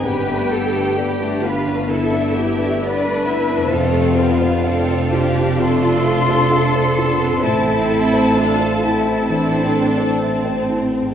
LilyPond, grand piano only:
\new Staff \with { instrumentName = "Grand piano" } { \time 4/4 \key f \lydian \tempo 4 = 65 g,16 b16 a'16 b'16 d''16 b'16 d'16 b16 d16 b16 a'16 b'16 d''16 b'16 d'16 b16 | f,16 c'16 a'16 c''16 f''16 c''16 f'16 c'16 c16 c'16 a'16 c''16 f''16 c''16 f'16 c'16 | a,16 c'16 a'16 c''16 e''16 c''16 e'16 c'16 e16 c'16 a'16 c''16 e''16 c''16 e'16 c'16 | }